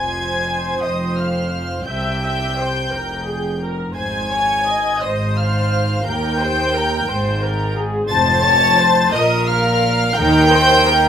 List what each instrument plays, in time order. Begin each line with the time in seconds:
Already playing: double bass section F1, cello section F2, viola section C5, violin section G#5 G#6
0.84 double bass section F1, cello section F2, violin section D#5 D#6
1.17 violin section F5 F6
1.86 double bass section C2, cello section C3, viola section E5, violin section G5 G6
2.22 viola section E5
2.57 viola section C5
2.92 double bass section F1, cello section F2, viola section A#4
3.27 viola section G#4
3.62 viola section A#4
3.95 double bass section G#1, cello section G#2, viola section C5, violin section G#5 G#6
4.32 viola section C#5
4.67 viola section D#5
5.01 double bass section G#1, cello section G#2, viola section C5, violin section D#5 D#6
5.37 violin section F5 F6
6.06 double bass section D#2, cello section D#2, viola section A#4, violin section G5 G6
6.40 viola section C5
6.74 viola section A#4
7.08 double bass section G#1, cello section G#2, viola section C5
7.43 viola section A#4
7.76 viola section G#4
8.09 double bass section F1, cello section F2, viola section C5, violin section A5 A6
8.44 viola section C#5
8.78 viola section C5
9.13 double bass section A#1, cello section A#2, viola section A#4, violin section D#5 D#6
9.47 violin section F5 F6
10.16 double bass section D#2, cello section D#3, viola section A#4, violin section G5 G6
10.52 viola section C5
10.87 viola section A#4